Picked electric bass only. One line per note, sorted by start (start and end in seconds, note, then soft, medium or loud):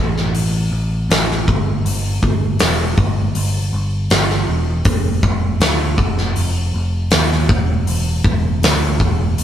0.00 0.33 A1 medium
0.35 0.71 A1 medium
0.71 1.08 A1 medium
1.09 1.49 A1 medium
1.48 1.84 G1 medium
1.85 2.21 G1 medium
2.22 2.59 G1 medium
2.61 2.97 E1 medium
2.98 3.34 G1 medium
3.35 3.72 G1 medium
3.73 4.09 G1 medium
4.11 4.47 G1 medium
4.48 4.84 E1 medium
4.85 5.22 F1 medium
5.24 5.60 F1 medium
5.60 5.97 D2 medium
5.97 6.34 F1 medium
6.37 6.73 F1 medium
6.74 7.10 F1 medium
7.13 7.48 D#2 medium
7.49 7.85 E1 medium
7.87 8.23 E1 medium
8.24 8.60 E1 medium
8.63 8.98 D2 medium
9.00 9.36 E1 medium
9.39 9.44 E1 medium